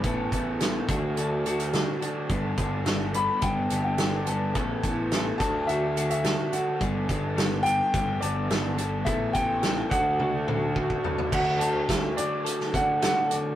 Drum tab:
CC |----------------|----------------|----------------|----------------|
HH |x-x-x-x-x-xxx-x-|x-x-x-x-x-x-x-x-|x-x-x-x-x-xxx-x-|x-x-x-x-x-x-x-x-|
SD |----o-------o---|----o-------o---|----o-------o---|----o-------o---|
T1 |----------------|----------------|----------------|----------------|
T2 |----------------|----------------|----------------|----------------|
FT |----------------|----------------|----------------|----------------|
BD |o-o---o---------|o-o-----o-------|o-o---o---------|o-o-----o-------|

CC |----------------|x---------------|
HH |x-x-x-x---------|--x-x-x-x-x-x-x-|
SD |----o-----------|----o----o--o---|
T1 |--------o-------|----------------|
T2 |----------o-----|----------------|
FT |--------------oo|----------------|
BD |o-o---o-----oo--|o---o-----o-----|